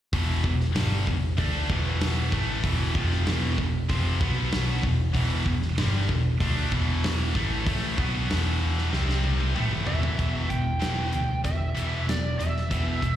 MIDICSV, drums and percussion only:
0, 0, Header, 1, 2, 480
1, 0, Start_track
1, 0, Key_signature, 1, "minor"
1, 0, Tempo, 628931
1, 102, Time_signature, 4, 2, 24, 8
1, 10044, End_track
2, 0, Start_track
2, 0, Title_t, "Drums"
2, 99, Note_on_c, 9, 36, 110
2, 99, Note_on_c, 9, 46, 58
2, 175, Note_off_c, 9, 36, 0
2, 176, Note_off_c, 9, 46, 0
2, 336, Note_on_c, 9, 36, 103
2, 413, Note_off_c, 9, 36, 0
2, 457, Note_on_c, 9, 38, 35
2, 533, Note_off_c, 9, 38, 0
2, 576, Note_on_c, 9, 46, 62
2, 579, Note_on_c, 9, 38, 107
2, 652, Note_off_c, 9, 46, 0
2, 655, Note_off_c, 9, 38, 0
2, 818, Note_on_c, 9, 36, 95
2, 894, Note_off_c, 9, 36, 0
2, 1055, Note_on_c, 9, 36, 101
2, 1056, Note_on_c, 9, 46, 59
2, 1132, Note_off_c, 9, 36, 0
2, 1132, Note_off_c, 9, 46, 0
2, 1295, Note_on_c, 9, 36, 118
2, 1371, Note_off_c, 9, 36, 0
2, 1535, Note_on_c, 9, 46, 60
2, 1538, Note_on_c, 9, 38, 110
2, 1611, Note_off_c, 9, 46, 0
2, 1614, Note_off_c, 9, 38, 0
2, 1772, Note_on_c, 9, 36, 101
2, 1849, Note_off_c, 9, 36, 0
2, 2013, Note_on_c, 9, 36, 117
2, 2017, Note_on_c, 9, 46, 63
2, 2089, Note_off_c, 9, 36, 0
2, 2093, Note_off_c, 9, 46, 0
2, 2252, Note_on_c, 9, 36, 117
2, 2328, Note_off_c, 9, 36, 0
2, 2377, Note_on_c, 9, 38, 37
2, 2454, Note_off_c, 9, 38, 0
2, 2492, Note_on_c, 9, 46, 60
2, 2495, Note_on_c, 9, 38, 100
2, 2568, Note_off_c, 9, 46, 0
2, 2571, Note_off_c, 9, 38, 0
2, 2733, Note_on_c, 9, 36, 95
2, 2809, Note_off_c, 9, 36, 0
2, 2973, Note_on_c, 9, 36, 101
2, 2979, Note_on_c, 9, 46, 56
2, 3050, Note_off_c, 9, 36, 0
2, 3056, Note_off_c, 9, 46, 0
2, 3212, Note_on_c, 9, 36, 125
2, 3288, Note_off_c, 9, 36, 0
2, 3451, Note_on_c, 9, 46, 56
2, 3454, Note_on_c, 9, 38, 112
2, 3528, Note_off_c, 9, 46, 0
2, 3531, Note_off_c, 9, 38, 0
2, 3689, Note_on_c, 9, 36, 90
2, 3766, Note_off_c, 9, 36, 0
2, 3927, Note_on_c, 9, 46, 59
2, 3928, Note_on_c, 9, 36, 99
2, 4003, Note_off_c, 9, 46, 0
2, 4004, Note_off_c, 9, 36, 0
2, 4166, Note_on_c, 9, 36, 95
2, 4242, Note_off_c, 9, 36, 0
2, 4287, Note_on_c, 9, 38, 35
2, 4363, Note_off_c, 9, 38, 0
2, 4408, Note_on_c, 9, 46, 58
2, 4411, Note_on_c, 9, 38, 116
2, 4485, Note_off_c, 9, 46, 0
2, 4488, Note_off_c, 9, 38, 0
2, 4648, Note_on_c, 9, 36, 92
2, 4725, Note_off_c, 9, 36, 0
2, 4888, Note_on_c, 9, 36, 102
2, 4888, Note_on_c, 9, 46, 59
2, 4964, Note_off_c, 9, 36, 0
2, 4965, Note_off_c, 9, 46, 0
2, 5129, Note_on_c, 9, 36, 110
2, 5205, Note_off_c, 9, 36, 0
2, 5373, Note_on_c, 9, 46, 66
2, 5376, Note_on_c, 9, 38, 112
2, 5449, Note_off_c, 9, 46, 0
2, 5452, Note_off_c, 9, 38, 0
2, 5610, Note_on_c, 9, 36, 108
2, 5686, Note_off_c, 9, 36, 0
2, 5850, Note_on_c, 9, 36, 108
2, 5853, Note_on_c, 9, 46, 60
2, 5927, Note_off_c, 9, 36, 0
2, 5929, Note_off_c, 9, 46, 0
2, 6090, Note_on_c, 9, 36, 112
2, 6167, Note_off_c, 9, 36, 0
2, 6338, Note_on_c, 9, 46, 59
2, 6341, Note_on_c, 9, 38, 100
2, 6414, Note_off_c, 9, 46, 0
2, 6417, Note_off_c, 9, 38, 0
2, 6700, Note_on_c, 9, 38, 31
2, 6776, Note_off_c, 9, 38, 0
2, 6814, Note_on_c, 9, 38, 57
2, 6890, Note_off_c, 9, 38, 0
2, 6937, Note_on_c, 9, 38, 59
2, 7014, Note_off_c, 9, 38, 0
2, 7051, Note_on_c, 9, 48, 79
2, 7127, Note_off_c, 9, 48, 0
2, 7175, Note_on_c, 9, 48, 64
2, 7251, Note_off_c, 9, 48, 0
2, 7295, Note_on_c, 9, 47, 85
2, 7372, Note_off_c, 9, 47, 0
2, 7414, Note_on_c, 9, 45, 74
2, 7490, Note_off_c, 9, 45, 0
2, 7530, Note_on_c, 9, 43, 87
2, 7606, Note_off_c, 9, 43, 0
2, 7657, Note_on_c, 9, 43, 100
2, 7733, Note_off_c, 9, 43, 0
2, 7777, Note_on_c, 9, 36, 103
2, 7777, Note_on_c, 9, 42, 82
2, 7853, Note_off_c, 9, 36, 0
2, 7854, Note_off_c, 9, 42, 0
2, 8015, Note_on_c, 9, 36, 81
2, 8017, Note_on_c, 9, 42, 58
2, 8092, Note_off_c, 9, 36, 0
2, 8093, Note_off_c, 9, 42, 0
2, 8256, Note_on_c, 9, 42, 85
2, 8259, Note_on_c, 9, 38, 108
2, 8332, Note_off_c, 9, 42, 0
2, 8335, Note_off_c, 9, 38, 0
2, 8491, Note_on_c, 9, 42, 69
2, 8567, Note_off_c, 9, 42, 0
2, 8735, Note_on_c, 9, 36, 100
2, 8735, Note_on_c, 9, 42, 80
2, 8811, Note_off_c, 9, 42, 0
2, 8812, Note_off_c, 9, 36, 0
2, 8982, Note_on_c, 9, 42, 73
2, 9058, Note_off_c, 9, 42, 0
2, 9227, Note_on_c, 9, 42, 92
2, 9230, Note_on_c, 9, 38, 107
2, 9303, Note_off_c, 9, 42, 0
2, 9306, Note_off_c, 9, 38, 0
2, 9467, Note_on_c, 9, 42, 64
2, 9543, Note_off_c, 9, 42, 0
2, 9588, Note_on_c, 9, 38, 31
2, 9664, Note_off_c, 9, 38, 0
2, 9700, Note_on_c, 9, 36, 100
2, 9703, Note_on_c, 9, 42, 80
2, 9776, Note_off_c, 9, 36, 0
2, 9779, Note_off_c, 9, 42, 0
2, 9940, Note_on_c, 9, 36, 82
2, 9945, Note_on_c, 9, 42, 63
2, 10016, Note_off_c, 9, 36, 0
2, 10021, Note_off_c, 9, 42, 0
2, 10044, End_track
0, 0, End_of_file